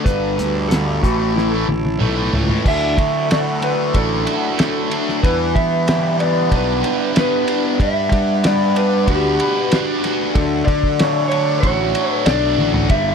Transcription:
Already playing: harmonium A4 D5 A5
0.04 fingered electric bass G1, distorted electric guitar G2 D3 G3, harmonium G4, electric slide guitar B4, kick, closed hi-hat
0.37 fingered electric bass D2, distorted electric guitar G2 D3 G3, closed hi-hat
0.68 distorted electric guitar G2 D3 G3, electric slide guitar A4, closed hi-hat
0.72 snare
0.85 distorted electric guitar D3 G3
1.01 fingered electric bass A1, distorted electric guitar A2 E3 A3, harmonium E4 A4 C#5, electric slide guitar F#4, kick, closed hi-hat
1.18 distorted electric guitar E3 A3
1.36 electric slide guitar E4, snare
1.51 distorted electric guitar E3 A3
1.67 fingered electric bass A1, muted distorted electric guitar stroke, high tom
1.85 high tom
1.99 fingered electric bass B1, distorted electric guitar A2 E3 A3, mid tom
2.16 distorted electric guitar E3 A3
2.32 fingered electric bass C#2, distorted electric guitar A2 E3 A3, floor tom
2.48 distorted electric guitar E3 A3, floor tom
2.64 fingered electric bass D2, distorted electric guitar D3, harmonium F#3 A3 D4 E4 A4, electric slide guitar E5, kick, crash
2.97 fingered electric bass D3, distorted electric guitar A3, kick, ride
3.29 distorted electric guitar F#4, electric slide guitar D5, snare, ride
3.61 distorted electric guitar A3, electric slide guitar B4, ride
3.93 fingered electric bass A1, distorted electric guitar D4, electric slide guitar A4, kick, ride
4.26 distorted electric guitar F#4, ride
4.57 distorted electric guitar A3, snare, ride
4.90 distorted electric guitar D4, ride
5.09 snare
5.22 fingered electric bass E2, distorted electric guitar E3, harmonium G3 B3 E4 B4, electric slide guitar B4, kick, ride
5.54 fingered electric bass E3, distorted electric guitar B3, electric slide guitar E5, kick, ride
5.87 distorted electric guitar G4, snare, ride
6.19 distorted electric guitar B3, electric slide guitar D5, ride
6.49 fingered electric bass B1, distorted electric guitar D4, kick, ride
6.55 electric slide guitar B4
6.82 distorted electric guitar G4, ride
7.14 distorted electric guitar B3, snare, ride
7.19 electric slide guitar B4
7.46 distorted electric guitar D4, ride
7.78 fingered electric bass G2, distorted electric guitar G3, harmonium F#5, kick, ride
7.83 electric slide guitar E5
8.11 fingered electric bass G3, distorted electric guitar D4, kick, ride
8.43 distorted electric guitar B4, electric slide guitar D5, snare, ride
8.74 distorted electric guitar D4, electric slide guitar B4, ride
9.07 fingered electric bass D2, distorted electric guitar F#4, electric slide guitar G4, kick, ride
9.40 distorted electric guitar B4, ride
9.71 distorted electric guitar D4, electric slide guitar F#4, snare, ride
10.02 distorted electric guitar F#4, snare, ride
10.34 fingered electric bass D2, distorted electric guitar D3, harmonium F#3 A3 D4 A4, electric slide guitar A4, kick, ride
10.65 fingered electric bass D3, distorted electric guitar D4, electric slide guitar D5, kick, ride
10.83 kick
10.99 distorted electric guitar C#5, snare, ride
11.28 electric slide guitar C#5, ride
11.32 distorted electric guitar D4
11.61 fingered electric bass A1, distorted electric guitar F#4, electric slide guitar C#5, kick, ride
11.95 distorted electric guitar C#5, ride
12.12 electric slide guitar B4
12.25 fingered electric bass B1, distorted electric guitar D4, electric slide guitar D5, snare, ride
12.58 fingered electric bass A1, distorted electric guitar F#4, high tom
12.74 floor tom
12.90 fingered electric bass G1, distorted electric guitar G2 D3 G3, electric slide guitar E5, kick, ride

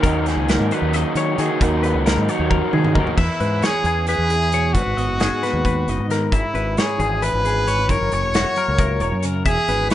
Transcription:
Already playing: clean electric guitar F#3
0.03 fingered electric bass D#2, overdriven electric guitar D#3 F#3 A#3 D#4, clean electric guitar D#3 C#4 A#4, kick, closed hi-hat
0.07 clean electric guitar D#4 F#4
0.26 clean electric guitar C#4 G#4, snare, closed hi-hat
0.37 fingered electric bass C#2
0.49 clean electric guitar F#3 D#4 A#4, snare, closed hi-hat
0.60 fingered electric bass G#2
0.71 overdriven electric guitar D#3 F#3 A#3 D#4, clean electric guitar F#4 B4, closed hi-hat
0.82 fingered electric bass D#2
0.93 clean electric guitar C#4 D#5, closed hi-hat
1.15 fingered electric bass D#3, clean electric guitar D#3 C#4 C#5, closed hi-hat
1.27 clean electric guitar D#4
1.38 overdriven electric guitar D#3 F#3 A#3 D#4, fingered electric bass D#3, clean electric guitar F#4 G#4, closed hi-hat
1.60 fingered electric bass D#2, overdriven electric guitar D#3 F#3 A#3 D#4, clean electric guitar D#3 C#4 D#4 F#4 A#4, kick, closed hi-hat
1.83 clean electric guitar C#4 B4, closed hi-hat
1.94 fingered electric bass C#2
2.05 clean electric guitar F#3 D#4 A#4, snare, closed hi-hat
2.17 fingered electric bass G#2
2.28 overdriven electric guitar D#3 F#3 A#3 D#4, clean electric guitar F#4 C#5, closed hi-hat
2.40 fingered electric bass D#2
2.50 clean electric guitar C#4 A#4, kick, high tom
2.72 clean electric guitar D#3 D#4 G#4, fingered electric bass D#3, mid tom
2.85 mid tom
2.94 fingered electric bass D#2, overdriven electric guitar D#3 F#3 A#3 D#4, clean electric guitar F#4 A#4, kick
3.07 floor tom
3.17 clean electric guitar E2 E5, fingered electric bass E2, kick, crash
3.21 trumpet E4
3.40 fingered electric bass G#2, clean electric guitar C#4 B4, closed hi-hat
3.60 clean electric guitar C#4 C#5, snare, closed hi-hat
3.65 trumpet G#4
3.71 clean electric guitar E4
3.83 fingered electric bass E2, clean electric guitar E3 C#4 G#4, closed hi-hat
4.06 clean electric guitar E4 B4, trumpet G#4, closed hi-hat
4.18 fingered electric bass E2
4.29 clean electric guitar E4 G#4, closed hi-hat
4.52 clean electric guitar B2 E4 C#5, closed hi-hat
4.73 fingered electric bass G#1, clean electric guitar G#2 B4, trumpet F#4, kick, closed hi-hat
4.86 fingered electric bass G#1
4.97 fingered electric bass G#1, clean electric guitar B3 D#5, closed hi-hat
5.08 fingered electric bass F#1
5.18 clean electric guitar D#4 G#4, snare, closed hi-hat
5.43 clean electric guitar G#3 B3 B4, snare, closed hi-hat
5.53 fingered electric bass D#2
5.64 clean electric guitar D#4 B4, kick, closed hi-hat
5.87 fingered electric bass F#1, clean electric guitar D#4 D#5, closed hi-hat
5.99 fingered electric bass G#2
6.08 clean electric guitar D#3 D#4 A#4, closed hi-hat
6.12 snare
6.30 fingered electric bass G#1, clean electric guitar G#2 E5, trumpet E4, kick, closed hi-hat
6.53 fingered electric bass G#1, clean electric guitar C#4 B4, closed hi-hat
6.77 clean electric guitar E4 C#5, trumpet G#4, snare, closed hi-hat
6.97 fingered electric bass G#1, clean electric guitar E3 C#4 G#4, closed hi-hat
7.22 clean electric guitar E4 B4, trumpet B4, closed hi-hat
7.34 fingered electric bass G#1
7.45 clean electric guitar G#4, closed hi-hat
7.67 clean electric guitar G#2 C#4 C#5, closed hi-hat
7.78 clean electric guitar E4
7.88 fingered electric bass F#1, clean electric guitar F#2 A#4, trumpet C#5, kick, closed hi-hat
8.01 fingered electric bass F#1
8.11 fingered electric bass F#1, clean electric guitar A#3 C#5, closed hi-hat
8.24 fingered electric bass E1
8.34 clean electric guitar E4 F#4, snare, closed hi-hat
8.56 clean electric guitar F#3 A#3 A#4, closed hi-hat
8.68 fingered electric bass C#2
8.78 clean electric guitar E4 A#4, kick, closed hi-hat
9.00 fingered electric bass E1, clean electric guitar A#4 C#5, closed hi-hat
9.12 fingered electric bass F#2
9.23 clean electric guitar C#3 C#4 A#4, closed hi-hat
9.34 clean electric guitar E4
9.45 fingered electric bass E1, clean electric guitar E2 E5, trumpet G#4, kick, closed hi-hat
9.68 fingered electric bass G#1, clean electric guitar C#4 B4, closed hi-hat
9.90 clean electric guitar E4, trumpet B4, closed hi-hat

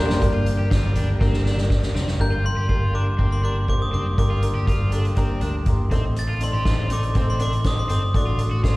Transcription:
Already playing: picked electric bass F1, upright piano G2 D3 A#3 D4 G4 A4 A#4 C5, string section D3 G3 A#3 G4 A#4
0.09 snare
0.22 picked electric bass G1, string section D3 G3 A#3 G4 A#4, upright piano G3 A#3 D4, kick, closed hi-hat
0.34 overdriven electric guitar F4
0.46 closed hi-hat
0.59 picked electric bass G1, overdriven electric guitar G4
0.71 overdriven electric guitar F4, kick, snare, closed hi-hat
0.95 overdriven electric guitar D4, closed hi-hat, floor tom
1.20 picked electric bass G1, upright piano G3 A#3 D4, overdriven electric guitar C4, kick, snare
1.33 snare
1.46 overdriven electric guitar D4, snare
1.58 snare
1.70 kick, snare
1.83 snare
1.95 picked electric bass F1, overdriven electric guitar C4, snare
2.07 snare
2.19 picked electric bass G1, upright piano G2 D3 A#3 D4 G4 A#4, string section D3 G3 A#3 G4 A#4, glockenspiel G6, kick
2.32 overdriven electric guitar F4
2.44 upright piano A#3 D4 G4 A#4, glockenspiel C6
2.57 picked electric bass G1, overdriven electric guitar G4
2.69 upright piano A#3 D4 G4 A#4, overdriven electric guitar F4, kick
2.94 upright piano A#3 D4 G4 A#4, overdriven electric guitar D4, glockenspiel D6
3.18 picked electric bass G1, upright piano A#3 D4 G4 A#4, overdriven electric guitar C4, kick
3.32 glockenspiel C6
3.43 upright piano A#3 D4 G4 A#4, overdriven electric guitar D4, glockenspiel D6
3.68 upright piano A#3 D4 G4 C5, glockenspiel D6, kick
3.82 glockenspiel D#6
3.93 picked electric bass F#1, upright piano A#3 D4 G4 A#4, overdriven electric guitar C4, glockenspiel D6
4.18 picked electric bass G1, upright piano G2 D3 A#3 D4 G4 A#4, glockenspiel D6, kick, closed hi-hat
4.30 overdriven electric guitar F4
4.42 upright piano A#3 D4 G4 A#4, closed hi-hat
4.55 picked electric bass G1, overdriven electric guitar G4
4.67 upright piano A#3 D4 G4 A#4, overdriven electric guitar F4, kick, closed hi-hat
4.92 upright piano A#3 D4 G4 A4, overdriven electric guitar D4, closed hi-hat
5.05 closed hi-hat
5.16 upright piano A#3 D4 G4 A#4, overdriven electric guitar C4, kick, closed hi-hat
5.41 picked electric bass D2, upright piano A#3 D4 G4 A#4, overdriven electric guitar D4, closed hi-hat
5.66 picked electric bass G1, upright piano A#3 D4 G4 A#4 C6, kick, closed hi-hat
5.90 picked electric bass A1, upright piano A2 A3 C4 D#4 A4 C5, string section C3 D#3 A3 D#4 A4, overdriven electric guitar C4, kick, closed hi-hat
6.16 glockenspiel A6, closed hi-hat
6.29 overdriven electric guitar F4
6.40 upright piano C4 D#4 A4 D5, glockenspiel C6, closed hi-hat
6.53 picked electric bass A1, overdriven electric guitar G4
6.65 upright piano C4 D#4 A4 C5, overdriven electric guitar F4, kick, snare, closed hi-hat
6.90 upright piano C4 D#4 A4 D5, overdriven electric guitar D#4, glockenspiel D6, closed hi-hat
7.03 closed hi-hat
7.15 picked electric bass A1, overdriven electric guitar C4, upright piano C4 D#4 A4 C5, kick, closed hi-hat
7.30 glockenspiel C6
7.39 upright piano C4 D#4 A4 C5, overdriven electric guitar D4, glockenspiel D6, closed hi-hat
7.53 closed hi-hat
7.64 upright piano C4 D#4 A4 C5, glockenspiel D#6, kick, snare, closed hi-hat
7.79 glockenspiel C6
7.89 picked electric bass G1, overdriven electric guitar C4, upright piano C4 D#4 A4 C5, glockenspiel D#6, closed hi-hat
8.14 picked electric bass A1, string section A2 D3 F#3 D4 F#4, upright piano A2 A3 D4 F#4 A4 D5, glockenspiel D6, kick, closed hi-hat
8.27 overdriven electric guitar F4
8.38 upright piano D4 F#4 A4 D5, closed hi-hat
8.51 picked electric bass A1, overdriven electric guitar F#4
8.63 upright piano D4 F#4 A4 C5, overdriven electric guitar F4, kick, snare, closed hi-hat

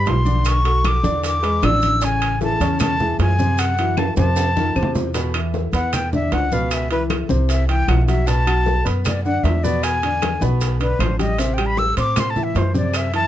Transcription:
Already playing: upright piano G3 G4 B4, flute B5
0.06 upright bass B1, flute C6, high bongo, low bongo, high timbale, low timbale, maracas
0.25 upright piano D3 D4 D5, high bongo, high conga, maracas
0.45 flute C#6, high bongo, high conga, high timbale, claves, maracas
0.64 upright piano F#3 F#4 A4, high bongo, high conga, high timbale, maracas
0.85 flute D6, high bongo, high conga, high timbale, low timbale, claves, maracas
1.03 upright bass E2, upright piano D3 D4 D5, high bongo, high conga, maracas
1.24 flute D6, high bongo, high conga, high timbale, maracas
1.43 upright piano G#3 G#4 B4, high conga, high timbale, maracas
1.62 upright bass A1, upright piano D3 D4 D5, flute E6, high bongo, low bongo, high conga, high timbale, low timbale, claves, maracas
1.82 high bongo, high conga, high timbale, maracas
2.01 upright piano C#3 C#4 C#5, flute G#5, high bongo, high conga, high timbale, maracas
2.22 high bongo, high conga, high timbale, claves, maracas
2.41 upright piano E3 E4 G#4, flute A5, high bongo, high conga, low timbale, maracas
2.60 upright bass E2, upright piano C#3 C#4 C#5, high bongo, high timbale, maracas
2.80 flute A5, high bongo, high conga, low conga, high timbale, claves, maracas
3.00 upright piano E3 E4 G#4, high conga, low conga, maracas
3.19 upright bass F#2, flute G#5, high bongo, low bongo, high timbale, low timbale, maracas
3.39 upright piano C3 C4 C5, high bongo, high conga, maracas
3.58 flute F#5, high bongo, high timbale, claves, maracas
3.78 upright piano E3 E4 F#4, high bongo, high conga, high timbale, maracas
3.97 flute A5, high bongo, high conga, high timbale, claves, maracas
4.16 upright bass F2, upright piano C3 C4 C5, flute A5, high bongo, high conga, high timbale, maracas
4.36 high bongo, high timbale, maracas
4.56 upright piano D#3 D#4 F4, high bongo, high conga, maracas
4.75 upright bass E2, upright piano C3 C4 C5, claves, maracas
4.83 low conga
4.95 low bongo, low conga, low timbale, maracas
5.14 upright piano B2 B3 B4, high bongo, high conga, high timbale, maracas
5.34 upright piano E3 E4 E5, high bongo, high conga, high timbale, claves, maracas
5.54 high bongo, high conga, low timbale, maracas
5.73 upright bass E2, upright piano B3 B4 B5, flute F#5, high bongo, high conga, high timbale, maracas
5.93 flute G5, high bongo, high conga, low conga, high timbale, claves, maracas
6.13 upright piano D3 D4 D5, flute E5, high conga, low conga, maracas
6.32 upright bass C#2, flute F#5, high bongo, low bongo, high timbale, low timbale, maracas
6.52 upright piano B2 B3 B4, flute F5, high bongo, high conga, maracas
6.71 flute E5, high bongo, high conga, high timbale, claves, maracas
6.91 upright piano E3 E4 E5, flute B4, high bongo, high conga, high timbale, maracas
7.10 high bongo, high conga, high timbale, low timbale, claves, maracas
7.29 upright bass C2, upright piano C3 C4 C5, high bongo, high conga, maracas
7.49 flute E5, high bongo, high timbale, maracas
7.68 upright piano E3 E4 E5, flute G5, high conga, high timbale, maracas
7.88 upright bass B1, flute F#5, high bongo, low bongo, high conga, high timbale, low timbale, claves, maracas
8.08 upright piano F#3 F#4 F#5, flute E5, high bongo, high conga, high timbale, maracas
8.27 upright piano B2 B3 B4, flute A5, high bongo, high timbale, maracas
8.46 upright piano F#3 F#4 F#5, high bongo, high conga, high timbale, claves, maracas
8.66 high bongo, high conga, low timbale, maracas
8.85 upright bass F#2, upright piano B3 B4 B5, high bongo, high timbale, maracas
9.05 flute D5, high bongo, high conga, low conga, high timbale, claves, maracas
9.24 upright piano D3 D4 D5, flute F#5, high conga, maracas
9.43 upright bass E2, flute E5, high bongo, low bongo, high conga, high timbale, low timbale, maracas
9.63 upright piano B2 B3 B4, flute D5, high bongo, high conga, maracas
9.83 flute G#5, high bongo, high conga, high timbale, claves, maracas
10.03 upright piano D3 D4 D5, high bongo, high conga, high timbale, maracas
10.22 high bongo, high conga, high timbale, low timbale, claves, maracas
10.41 upright bass B1, upright piano B2 B3 B4, high bongo, high conga, maracas
10.61 high bongo, high conga, high timbale, maracas
10.80 upright piano D3 D4 D5, flute B4, high conga, high timbale, maracas
10.99 upright bass A1, flute C5, high bongo, low bongo, high conga, high timbale, low timbale, claves, maracas
11.19 upright piano G3 G4 G5, flute D#5, high bongo, high conga, high timbale, maracas
11.38 upright piano C3 C4 C5, flute E5, high bongo, high timbale, maracas
11.54 flute G5
11.58 upright piano G3 G4 G5, high bongo, high conga, high timbale, claves, maracas
11.66 flute B5
11.77 flute E6, high bongo, high conga, low timbale, maracas
11.97 upright bass A2, upright piano C4 C5 C6, flute D6, high bongo, high conga, high timbale, maracas
12.16 flute C6, high bongo, high conga, low conga, high timbale, claves, maracas
12.30 flute A5
12.36 upright piano E3 E4 E5, high conga, low conga, maracas
12.44 flute E5
12.55 upright bass F#2, flute C5, high bongo, low bongo, high timbale, low timbale, maracas
12.74 upright piano C3 C4 C5, flute D5, high bongo, high conga, maracas
12.94 flute E5, high bongo, high conga, high timbale, claves, maracas
13.13 upright piano E3 E4 E5, flute A5, high bongo, high conga, high timbale, maracas

